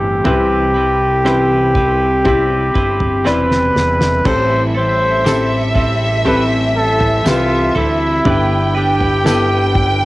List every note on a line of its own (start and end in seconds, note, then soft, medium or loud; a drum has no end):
0.00 0.22 G1 medium
0.00 0.24 A2 medium
0.00 0.25 E3 medium
0.00 0.25 G3 medium
0.00 0.24 C4 medium
0.00 0.26 C4 medium
0.00 0.26 E4 medium
0.00 0.28 G4 medium
0.00 3.23 G4 medium
0.00 0.26 A4 medium
0.00 0.27 A4 medium
0.00 0.21 B4 medium
0.24 2.71 C2 loud
0.24 0.75 C3 medium
0.24 1.71 C3 medium
0.24 0.75 E3 medium
0.24 1.71 G3 medium
0.24 0.75 G3 medium
0.24 1.20 C4 medium
0.24 0.75 C4 medium
0.24 1.20 E4 medium
0.24 0.75 E4 medium
0.24 1.21 B4 medium
0.24 0.73 B4 medium
0.24 floor tom medium
0.74 1.25 G3 soft
0.74 1.25 C4 soft
0.74 1.26 E4 soft
0.74 1.25 B4 medium
1.25 1.75 C3 medium
1.25 1.75 E3 medium
1.25 1.76 G3 medium
1.25 2.20 C4 medium
1.25 1.76 C4 medium
1.25 2.21 E4 medium
1.25 1.75 E4 loud
1.25 2.21 B4 medium
1.25 1.74 B4 medium
1.25 cross-stick loud
1.75 2.23 G3 medium
1.75 2.25 C4 medium
1.75 2.26 E4 medium
1.75 2.25 B4 medium
1.75 kick medium
1.75 floor tom medium
2.24 2.75 G3 medium
2.24 3.20 C4 medium
2.24 2.75 C4 medium
2.24 3.20 E4 medium
2.24 2.74 E4 medium
2.24 3.21 G4 medium
2.24 2.73 B4 medium
2.24 kick medium
2.24 floor tom medium
2.74 3.27 G1 medium
2.74 3.24 G3 soft
2.74 3.25 C4 medium
2.74 3.25 E4 medium
2.74 3.25 B4 medium
2.74 kick medium
3.00 floor tom medium
3.24 3.72 E1 medium
3.24 4.24 C3 medium
3.24 4.25 E3 medium
3.24 4.25 G3 medium
3.24 4.20 C4 medium
3.24 4.26 C4 medium
3.24 4.20 E4 medium
3.24 4.26 E4 medium
3.24 4.26 B4 medium
3.24 4.29 B4 medium
3.24 4.21 D5 medium
3.24 snare soft
3.51 snare medium
3.76 4.22 E1 medium
3.76 snare medium
4.01 snare medium
4.25 7.21 A1 loud
4.25 4.75 A2 medium
4.25 5.71 A2 medium
4.25 4.75 E3 medium
4.25 5.71 E3 medium
4.25 4.76 G3 medium
4.25 5.20 C4 medium
4.25 4.76 C4 medium
4.25 4.75 E4 medium
4.25 5.21 G4 medium
4.25 5.21 A4 medium
4.25 4.73 A4 medium
4.25 4.63 C5 loud
4.25 8.21 E5 medium
4.25 kick medium
4.25 floor tom loud
4.25 crash medium
4.75 5.23 G3 soft
4.75 5.25 C4 soft
4.75 5.26 E4 soft
4.75 5.25 A4 medium
4.75 5.73 C5 loud
5.24 5.75 G3 medium
5.24 6.20 C4 medium
5.24 5.76 C4 medium
5.24 5.75 E4 medium
5.24 6.21 G4 medium
5.24 6.21 A4 medium
5.24 5.73 A4 medium
5.24 snare loud
5.24 tambourine medium
5.74 6.25 G3 soft
5.74 6.25 C4 soft
5.74 6.26 E4 soft
5.74 6.25 A4 medium
5.74 kick medium
5.74 floor tom medium
6.25 7.25 A2 medium
6.25 8.29 E3 medium
6.25 7.24 G3 medium
6.25 7.20 C4 medium
6.25 7.24 C4 medium
6.25 7.76 E4 medium
6.25 7.20 G4 medium
6.25 7.21 A4 medium
6.25 7.26 A4 medium
6.25 6.44 B4 medium
6.25 floor tom medium
6.76 7.29 A4 medium
7.00 floor tom medium
7.24 7.72 C2 medium
7.24 7.75 G3 medium
7.24 8.20 C4 medium
7.24 7.76 C4 medium
7.24 7.76 F4 medium
7.24 8.21 G4 medium
7.24 7.74 A4 medium
7.24 8.21 B4 medium
7.24 snare loud
7.24 tambourine medium
7.75 8.22 D2 medium
7.75 8.24 G3 soft
7.75 8.25 C4 soft
7.75 8.25 E4 soft
7.75 8.72 E4 medium
7.75 8.25 A4 medium
7.75 floor tom medium
8.25 10.05 G1 loud
8.25 9.71 G2 medium
8.25 9.71 D3 medium
8.25 8.75 G3 medium
8.25 9.20 B3 medium
8.25 8.76 D4 medium
8.25 9.20 E4 medium
8.25 8.75 E4 medium
8.25 9.21 G4 medium
8.25 8.73 B4 medium
8.25 10.05 G5 loud
8.25 floor tom medium
8.75 9.25 D4 soft
8.75 9.26 E4 soft
8.75 10.05 G4 medium
8.75 9.25 B4 medium
9.00 floor tom medium
9.24 10.05 G3 medium
9.24 10.05 B3 medium
9.24 10.05 D4 medium
9.24 10.05 E4 medium
9.24 10.05 A4 medium
9.24 10.05 B4 medium
9.24 snare loud
9.24 tambourine medium
9.75 kick medium
9.75 floor tom medium